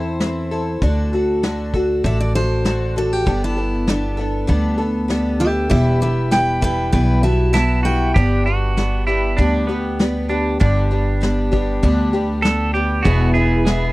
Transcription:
Already playing: upright bass E2, twelve-string acoustic guitar C4 E4 A4, steel-string acoustic guitar C5
0.20 twelve-string acoustic guitar E3 C4 E4 A4, snare
0.51 twelve-string acoustic guitar C4 E4 A4
0.82 upright bass D2, twelve-string acoustic guitar D3 D4 F#4 A4, kick
1.13 twelve-string acoustic guitar D4 F#4 A4
1.43 twelve-string acoustic guitar D3 D4 F#4 A4, snare
1.74 twelve-string acoustic guitar D4 F#4 A4, kick
2.04 upright bass A1, twelve-string acoustic guitar D3 D4 F#4 A4, steel-string acoustic guitar E5, kick
2.21 steel-string acoustic guitar D5
2.35 twelve-string acoustic guitar D4 F#4 A4, steel-string acoustic guitar C5
2.65 twelve-string acoustic guitar D3 D4 F#4 A4, snare
2.96 twelve-string acoustic guitar D4 F#4 A4, steel-string acoustic guitar A4
3.13 steel-string acoustic guitar G4
3.26 upright bass G1, twelve-string acoustic guitar G3 B3 D4 A4, kick
3.44 steel-string acoustic guitar E4
3.57 twelve-string acoustic guitar B3 D4 A4
3.87 twelve-string acoustic guitar G3 B3 D4 A4, steel-string acoustic guitar D4, snare
4.17 twelve-string acoustic guitar B3 D4 A4
4.47 upright bass D2, twelve-string acoustic guitar G3 B3 D4 A4, kick
4.78 twelve-string acoustic guitar B3 D4 A4
5.08 twelve-string acoustic guitar G3 B3 D4 A4, snare
5.40 twelve-string acoustic guitar B3 D4 A4, steel-string acoustic guitar G4 E5
5.70 upright bass E1, twelve-string acoustic guitar E2 E3 G3 B3 E4, steel-string acoustic guitar G4 E5, kick
6.01 twelve-string acoustic guitar G3 B3 E4, steel-string acoustic guitar G4 E5
6.31 twelve-string acoustic guitar G3 B3 E4, steel-string acoustic guitar B4 G5, snare
6.61 twelve-string acoustic guitar G3 B3 E4, steel-string acoustic guitar B4 G5, kick
6.92 upright bass B1, twelve-string acoustic guitar E2 E3 G3 B3 E4, steel-string acoustic guitar B4 G5, kick
7.23 twelve-string acoustic guitar G3 B3 E4 F#4, steel-string acoustic guitar E5 A5
7.53 twelve-string acoustic guitar G3 B3 E4 F#4, steel-string acoustic guitar E5 A5, snare
7.83 twelve-string acoustic guitar G3 B3 E4, pedal steel guitar F#4, steel-string acoustic guitar G5
8.16 upright bass G1, twelve-string acoustic guitar G2 D3 G3 B3 D4 G4, kick
8.46 twelve-string acoustic guitar G3 B3 D4, pedal steel guitar F#4
8.77 twelve-string acoustic guitar G3 B3 D4, snare
9.07 twelve-string acoustic guitar G3 B3 D4 G4, pedal steel guitar E4
9.38 upright bass D2, twelve-string acoustic guitar G2 D3 G3 B3 D4 G4, kick
9.68 twelve-string acoustic guitar G3 B3 D4 G4
9.99 twelve-string acoustic guitar G3 B3 D4 G4, snare
10.29 twelve-string acoustic guitar G3 B3 D4 G4
10.60 upright bass G1, twelve-string acoustic guitar G2 D3 G3 B3 D4 G4, kick
10.91 twelve-string acoustic guitar G3 B3 D4 G4
11.21 twelve-string acoustic guitar G3 B3 D4 G4, snare
11.52 twelve-string acoustic guitar G3 B3 D4 G4, kick
11.83 upright bass D2, twelve-string acoustic guitar G2 D3 G3 B3 D4 G4, kick
12.13 twelve-string acoustic guitar G3 B3 D4 G4
12.42 twelve-string acoustic guitar G3 B3 D4 G4, pedal steel guitar A4, snare
12.75 twelve-string acoustic guitar G3 B3 D4 G4
13.03 upright bass E1, twelve-string acoustic guitar E2 B2 E3 G#3 B3, pedal steel guitar F#4, clean electric guitar G#4, tonewheel organ G#4, kick
13.07 twelve-string acoustic guitar E4, tonewheel organ E5 B5
13.34 twelve-string acoustic guitar E3 G#3 B3 E4, pedal steel guitar G#4
13.65 twelve-string acoustic guitar E3 G#3 B3 E4, clean electric guitar G#4, snare

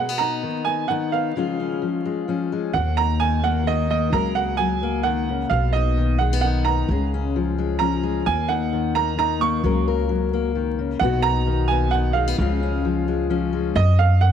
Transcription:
Already playing: steel-string acoustic guitar B2, upright piano F#5
0.09 steel-string acoustic guitar B3
0.18 steel-string acoustic guitar D#4, upright piano A#5
0.43 steel-string acoustic guitar D#3
0.65 steel-string acoustic guitar B3, upright piano G#5
0.88 steel-string acoustic guitar D#3 D#4, upright piano F#5
1.12 steel-string acoustic guitar B3, upright piano F5
1.36 steel-string acoustic guitar C#3 F3 G#3 C#4 F4
1.60 steel-string acoustic guitar C#4
1.82 steel-string acoustic guitar F3
2.05 steel-string acoustic guitar G#3
2.28 steel-string acoustic guitar F3 C#4
2.52 steel-string acoustic guitar G#3
2.73 upright bass D#2, steel-string acoustic guitar D#2 A#3, upright piano F#5
2.97 steel-string acoustic guitar D#4, upright piano A#5
3.20 steel-string acoustic guitar D#3, upright piano G#5
3.44 steel-string acoustic guitar A#3, upright piano F#5
3.67 steel-string acoustic guitar D#3 D#4, upright piano D#5
3.90 steel-string acoustic guitar A#3, upright piano D#5
4.12 upright bass C#2, steel-string acoustic guitar C#3 F#3 A#3 A#4, upright piano A#5
4.35 steel-string acoustic guitar A#4, upright piano F#5
4.57 steel-string acoustic guitar F#3, upright piano G#5
4.83 steel-string acoustic guitar A#3
5.03 steel-string acoustic guitar D#3, upright piano F#5
5.29 steel-string acoustic guitar C#3
5.50 upright bass B1, steel-string acoustic guitar B2 B3, upright piano F5
5.73 steel-string acoustic guitar D#4, upright piano D#5
5.97 steel-string acoustic guitar D#3
6.18 steel-string acoustic guitar G#3, upright piano F#5
6.33 steel-string acoustic guitar B3
6.41 steel-string acoustic guitar D#3 D#4, upright piano F#5
6.65 steel-string acoustic guitar B3, upright piano A#5
6.89 upright bass C#2, steel-string acoustic guitar C#3 G#3
7.14 steel-string acoustic guitar C#4
7.36 steel-string acoustic guitar F3
7.58 steel-string acoustic guitar G#3
7.79 steel-string acoustic guitar F3 C#4, upright piano A#5
8.03 steel-string acoustic guitar G#3
8.25 steel-string acoustic guitar D#2 A#3, upright bass D#2, upright piano G#5
8.48 steel-string acoustic guitar D#4, upright piano F#5
8.73 steel-string acoustic guitar D#3
8.95 steel-string acoustic guitar A#3, upright piano A#5
9.18 steel-string acoustic guitar D#3 D#4, upright piano A#5
9.41 steel-string acoustic guitar A#3, upright piano C#6
9.63 upright bass C#2, steel-string acoustic guitar C#3 F#3 A#3 A#4
9.88 steel-string acoustic guitar A#4
10.09 steel-string acoustic guitar F#3
10.33 steel-string acoustic guitar A#3
10.55 steel-string acoustic guitar D#3
10.79 steel-string acoustic guitar C#3
10.99 upright bass B1, steel-string acoustic guitar B2 D#3 B3 D#4, upright piano F#5
11.04 steel-string acoustic guitar F#4
11.22 steel-string acoustic guitar D#4, upright piano A#5
11.47 steel-string acoustic guitar D#3
11.68 steel-string acoustic guitar B3, upright piano G#5
11.91 steel-string acoustic guitar D#3 D#4, upright piano F#5
12.13 steel-string acoustic guitar G#3, upright piano F5
12.27 steel-string acoustic guitar B3
12.38 upright bass C#2, steel-string acoustic guitar C#3 F3 G#3 C#4 F4
12.63 steel-string acoustic guitar C#4
12.85 steel-string acoustic guitar F3
13.08 steel-string acoustic guitar G#3
13.30 steel-string acoustic guitar F3 C#4
13.53 steel-string acoustic guitar G#3
13.75 upright bass F#2, upright piano D#5
13.99 upright piano F5
14.21 upright piano F#5

